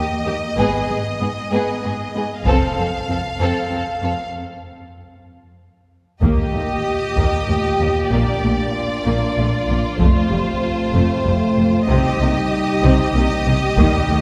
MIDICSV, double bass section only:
0, 0, Header, 1, 2, 480
1, 0, Start_track
1, 0, Tempo, 628272
1, 436, Time_signature, 3, 2, 24, 8
1, 10858, End_track
2, 0, Start_track
2, 0, Title_t, "Double bass section"
2, 0, Program_c, 0, 48
2, 441, Note_on_c, 0, 32, 47
2, 662, Note_off_c, 0, 32, 0
2, 1872, Note_on_c, 0, 29, 42
2, 2097, Note_off_c, 0, 29, 0
2, 4749, Note_on_c, 0, 39, 46
2, 4810, Note_off_c, 0, 39, 0
2, 5000, Note_on_c, 0, 39, 30
2, 5061, Note_off_c, 0, 39, 0
2, 5472, Note_on_c, 0, 39, 45
2, 5534, Note_off_c, 0, 39, 0
2, 5714, Note_on_c, 0, 39, 29
2, 5776, Note_off_c, 0, 39, 0
2, 5956, Note_on_c, 0, 39, 31
2, 6017, Note_off_c, 0, 39, 0
2, 6197, Note_on_c, 0, 34, 46
2, 6258, Note_off_c, 0, 34, 0
2, 6437, Note_on_c, 0, 34, 32
2, 6498, Note_off_c, 0, 34, 0
2, 6916, Note_on_c, 0, 34, 44
2, 6977, Note_off_c, 0, 34, 0
2, 7153, Note_on_c, 0, 34, 38
2, 7214, Note_off_c, 0, 34, 0
2, 7391, Note_on_c, 0, 34, 35
2, 7452, Note_off_c, 0, 34, 0
2, 7632, Note_on_c, 0, 29, 45
2, 7693, Note_off_c, 0, 29, 0
2, 7874, Note_on_c, 0, 29, 35
2, 7935, Note_off_c, 0, 29, 0
2, 8360, Note_on_c, 0, 29, 49
2, 8421, Note_off_c, 0, 29, 0
2, 8598, Note_on_c, 0, 29, 36
2, 8660, Note_off_c, 0, 29, 0
2, 8840, Note_on_c, 0, 29, 38
2, 8902, Note_off_c, 0, 29, 0
2, 9080, Note_on_c, 0, 36, 54
2, 9141, Note_off_c, 0, 36, 0
2, 9321, Note_on_c, 0, 36, 37
2, 9382, Note_off_c, 0, 36, 0
2, 9800, Note_on_c, 0, 36, 56
2, 9861, Note_off_c, 0, 36, 0
2, 10039, Note_on_c, 0, 36, 38
2, 10100, Note_off_c, 0, 36, 0
2, 10278, Note_on_c, 0, 36, 41
2, 10339, Note_off_c, 0, 36, 0
2, 10522, Note_on_c, 0, 39, 58
2, 10583, Note_off_c, 0, 39, 0
2, 10757, Note_on_c, 0, 39, 42
2, 10818, Note_off_c, 0, 39, 0
2, 10858, End_track
0, 0, End_of_file